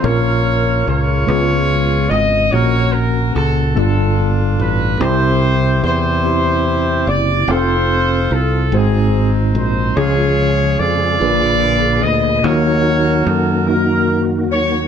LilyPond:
<<
  \new Staff \with { instrumentName = "Horn section" } { \time 6/8 \key des \major \tempo 4. = 48 << { des''4 des''4. ees''8 | des''8 bes'8 a'8 a'8 r8 b'8 | c''4 c''4. d''8 | c''4 a'8 aes'8 r8 c''8 |
des''4 d''4. ees''8 | des''4 a'8 bes'8 r8 des''8 | } \\ { <f' bes'>4 <f' aes'>4. r8 | <ges' bes'>4. <d' f'>4. | <e' g'>4 <e' g'>4. r8 | <f' a'>4. <c' ees'>4. |
<f' aes'>4 <f' aes'>4. r8 | <ges' bes'>4. r4. | } >> }
  \new Staff \with { instrumentName = "Tine electric piano" } { \time 6/8 \key des \major <bes, c' des' f' bes'>4. <des aes ces' des' f' ces''>4. | <bes, bes des' ges'>4. <g, g b d' f' a'>4. | <c c' e' g'>4. <c' e' g'>4. | <c' f' a'>4. <aes, aes c' ees' ges' c''>4. |
<des des' f' aes'>4. <bes, bes d' f' aes' ces''>4. | <ees bes ees' f' ges'>4. <bes ees' ges'>4. | }
  \new Staff \with { instrumentName = "Tonewheel organ" } { \time 6/8 \key des \major r2. | r2. | r2. | r2. |
aes'2. | ges'2. | }
  \new Staff \with { instrumentName = "Tonewheel organ" } { \clef bass \time 6/8 \key des \major r2. | r2. | r2. | r2. |
<des f aes>4. <d bes ces''>4. | <ees ges>2. | }
  \new Staff \with { instrumentName = "Fingered electric bass" } { \clef bass \time 6/8 \key des \major bes,,4 des,8 des,4 aes,,8 | bes,,4 des,8 g,,4 a,,8 | c,4 e,4. ges,,8 | f,,4 c,8 aes,,4 bes,,8 |
des,4 f,8 bes,,4 d,8 | ees,4 ges,4. ees,8 | }
>>